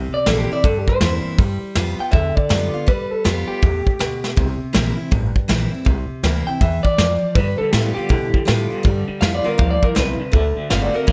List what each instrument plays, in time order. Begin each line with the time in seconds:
Already playing: upright bass C2, steel-string acoustic guitar C3
0.13 clean electric guitar D5, muted upright bass stroke
0.26 upright bass A#1, steel-string acoustic guitar E3 A#3 C4 E4, clean electric guitar A4, snare, open hi-hat
0.40 clean electric guitar G4
0.50 steel-string acoustic guitar C4 E4, clean electric guitar D5, muted upright bass stroke
0.64 upright bass D2, steel-string acoustic guitar G2, clean electric guitar A4, kick, open hi-hat
0.78 clean electric guitar G4
0.88 clean electric guitar C5, kick
1.01 upright bass E2, steel-string acoustic guitar E3 A#3 C4 E4, snare, open hi-hat
1.25 muted upright bass stroke
1.38 upright bass G2, steel-string acoustic guitar G3, kick, open hi-hat
1.62 muted upright bass stroke
1.75 upright bass F2, steel-string acoustic guitar G3 B3 F4, snare, open hi-hat
1.99 steel-string acoustic guitar B3 F4, clean electric guitar G5, muted upright bass stroke
2.11 upright bass E2, steel-string acoustic guitar D3, clean electric guitar E5, kick, open hi-hat
2.36 clean electric guitar D5, muted upright bass stroke, kick
2.49 upright bass F#2, steel-string acoustic guitar G3 B3 F4, snare, open hi-hat
2.73 steel-string acoustic guitar B3 F4, muted upright bass stroke
2.86 steel-string acoustic guitar G3, clean electric guitar B4, kick, open hi-hat
3.11 clean electric guitar A4, muted upright bass stroke
3.24 upright bass F2, steel-string acoustic guitar G3 B3 F4, clean electric guitar G4, snare, open hi-hat
3.48 clean electric guitar G4, muted upright bass stroke
3.62 upright bass E2, steel-string acoustic guitar A2, kick, open hi-hat
3.87 kick
3.99 upright bass D2, steel-string acoustic guitar B2, snare, open hi-hat
4.24 muted upright bass stroke, snare
4.36 upright bass C2, steel-string acoustic guitar C3, kick, open hi-hat
4.61 muted upright bass stroke
4.73 upright bass A#1, steel-string acoustic guitar E3 A#3 C4 E4, snare
4.97 steel-string acoustic guitar C4 E4
5.11 upright bass A1, steel-string acoustic guitar G2, kick, open hi-hat
5.35 muted upright bass stroke, kick
5.48 upright bass A#1, steel-string acoustic guitar E3 A#3 C4 E4, snare
5.72 steel-string acoustic guitar C4 E4
5.85 upright bass C2, steel-string acoustic guitar C3, kick, open hi-hat
6.10 muted upright bass stroke
6.23 upright bass D2, steel-string acoustic guitar E3 A#3 C4 E4, snare, open hi-hat
6.47 steel-string acoustic guitar C4 E4, clean electric guitar G5
6.61 upright bass E2, steel-string acoustic guitar E3, clean electric guitar E5, kick, open hi-hat
6.83 clean electric guitar D5, kick
6.98 upright bass F2, steel-string acoustic guitar F3, snare, open hi-hat
7.22 muted upright bass stroke
7.35 clean electric guitar G2 D3 B4, upright bass G2, steel-string acoustic guitar G3, kick, open hi-hat
7.58 clean electric guitar G2 D3 A4, muted upright bass stroke
7.71 clean electric guitar G2 E3 G4, upright bass A2, steel-string acoustic guitar G3 B3 F4, snare, open hi-hat
7.94 clean electric guitar G2 D3 G4, steel-string acoustic guitar F4, muted upright bass stroke
7.99 steel-string acoustic guitar B3
8.09 clean electric guitar G2 E3, upright bass B2, steel-string acoustic guitar D3, kick, open hi-hat
8.34 clean electric guitar G2 E3, kick
8.45 clean electric guitar G2 E3, upright bass A2, steel-string acoustic guitar G3 B3 F4, snare, open hi-hat
8.70 clean electric guitar G2 D3, steel-string acoustic guitar B3 F4, muted upright bass stroke
8.83 clean electric guitar G2 D3, upright bass G2, steel-string acoustic guitar G3, kick, open hi-hat
9.08 clean electric guitar G2 D3, muted upright bass stroke
9.21 upright bass F2, clean electric guitar G2 E3 F5, steel-string acoustic guitar G3 B3 F4, snare
9.35 clean electric guitar D5
9.44 clean electric guitar G2 D3 A#4, steel-string acoustic guitar B3 F4, muted upright bass stroke
9.58 upright bass D2, clean electric guitar G2 E3 F5, steel-string acoustic guitar F3, kick, open hi-hat
9.71 clean electric guitar D5
9.82 clean electric guitar G2 E3 A#4, kick
9.95 upright bass B1, clean electric guitar G2 E3 B4, steel-string acoustic guitar C3, snare
10.19 clean electric guitar G2 D3
10.32 upright bass D2, steel-string acoustic guitar D3, clean electric guitar D3 A3, kick, open hi-hat
10.56 clean electric guitar D3 A3, muted upright bass stroke
10.70 upright bass G1, clean electric guitar D3 B3 F5, steel-string acoustic guitar D3 A3 C4 F#4, snare, open hi-hat
10.82 clean electric guitar D5
10.93 clean electric guitar D3 A3 A#4, steel-string acoustic guitar C4 F#4
11.07 upright bass A1, clean electric guitar D3 B3 F5, steel-string acoustic guitar E3, kick, open hi-hat